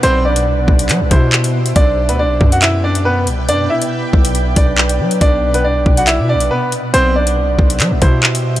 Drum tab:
HH |x--x---xx-x--x-x|x--x---xx--x--x-|x--x---xx-x--x-x|x--x---xx--x--x-|
CP |--------x---x---|--------x-------|------------x---|--------x-------|
BD |------o---o-----|o-----o---------|------o---o-----|o-----o---------|

HH |x--x---xx-x--x-x|
CP |--------x---x---|
BD |------o---o-----|